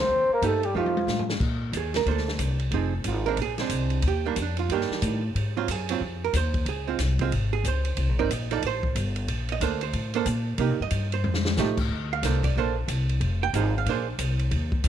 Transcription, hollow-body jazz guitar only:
0.43 A#3 D#4 G4
0.75 F3 A3 D#4 G4
1.77 G#4
1.96 A#4
2.07 A#3 D4 A4 C5
2.11 A4
2.74 F3 C4 D#4 G#4
3.08 F4
3.26 G#3 C4 D4 A#4
3.42 G#4
3.60 G#3 C4 D4
4.08 G4
4.25 D#3 G3 A#3 D4
4.42 D4
4.59 F4
4.71 D#3 G3 A#3 D4 G4
5.57 F#3 C4 F4
5.71 G#4
5.90 F#3 C4 F4
6.25 A#4
6.37 C5
6.69 G#4
6.87 G#3 C4 F4
7.21 G#3 C4 F4
7.53 G#4
7.68 C5
8.19 C4 D#4 A#4 D5
8.33 D#5
8.51 F3 D#4 A4 D5
8.67 C5
9.52 D#5
9.61 A#3 D4 A4 C5
9.83 C5
10.15 A#3 D4 A4 C5
10.59 A#3 D#4 G4
10.82 D#5
11.14 C5
11.58 F3 A3 D#4 G4
12.13 F5
12.24 A#3 D4 A4 C5
12.44 D5
12.58 A#3 D4 A4 C5
13.43 G5
13.55 F3 D#4 G#4 C5
13.78 F5
13.89 A#3 D4 G#4 C5

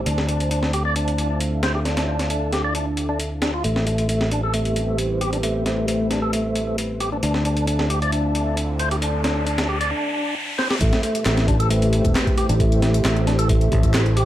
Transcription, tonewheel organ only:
0.06 D4
0.28 D4
0.51 D4
0.74 G4
0.85 D5
0.96 D4
1.63 C5
1.75 G4
1.85 D4
2.08 D4
2.30 D4
2.53 G4
2.64 D5
2.75 D4
3.09 D4
3.42 D4
3.54 F4
3.64 A3
3.87 A3
4.09 A3
4.32 D4
4.43 A4
4.54 A3
5.21 G4
5.33 D4
5.43 A3
5.66 A3
5.88 A3
6.10 D4
6.22 A4
6.33 A3
7.00 G4
7.12 D4
7.23 D4
7.45 D4
7.67 D4
7.90 G4
8.02 D5
8.12 D4
8.80 C5
8.91 G4
9.02 D4
9.24 D4
9.46 D4
9.69 G4
9.81 D5
9.91 D4
10.58 C5
10.70 G4
10.81 A3
11.03 A3
11.25 A3
11.48 D4
11.60 A4
11.70 A3
12.38 G4
12.49 D4
12.60 A3
12.82 A3
13.04 A3
13.27 D4
13.39 A4
13.49 A3
14.17 G4

